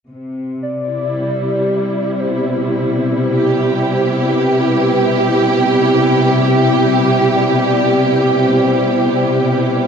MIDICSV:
0, 0, Header, 1, 3, 480
1, 0, Start_track
1, 0, Key_signature, 0, "major"
1, 0, Tempo, 1032702
1, 65, Time_signature, 4, 2, 24, 8
1, 2465, Tempo, 1018676
1, 4618, End_track
2, 0, Start_track
2, 0, Title_t, "Soft synth lead"
2, 0, Program_c, 0, 80
2, 291, Note_on_c, 0, 74, 106
2, 1023, Note_on_c, 0, 72, 97
2, 1030, Note_off_c, 0, 74, 0
2, 1505, Note_off_c, 0, 72, 0
2, 1512, Note_on_c, 0, 72, 92
2, 1986, Note_on_c, 0, 71, 95
2, 1993, Note_off_c, 0, 72, 0
2, 2702, Note_off_c, 0, 71, 0
2, 2705, Note_on_c, 0, 71, 85
2, 2933, Note_on_c, 0, 76, 99
2, 2940, Note_off_c, 0, 71, 0
2, 3436, Note_on_c, 0, 74, 99
2, 3443, Note_off_c, 0, 76, 0
2, 3916, Note_on_c, 0, 72, 97
2, 3923, Note_off_c, 0, 74, 0
2, 4618, Note_off_c, 0, 72, 0
2, 4618, End_track
3, 0, Start_track
3, 0, Title_t, "String section"
3, 0, Program_c, 1, 48
3, 42, Note_on_c, 1, 48, 60
3, 400, Note_on_c, 1, 64, 51
3, 509, Note_on_c, 1, 55, 61
3, 1034, Note_on_c, 1, 47, 51
3, 1558, Note_on_c, 1, 67, 77
3, 4618, Note_off_c, 1, 47, 0
3, 4618, Note_off_c, 1, 48, 0
3, 4618, Note_off_c, 1, 55, 0
3, 4618, Note_off_c, 1, 64, 0
3, 4618, Note_off_c, 1, 67, 0
3, 4618, End_track
0, 0, End_of_file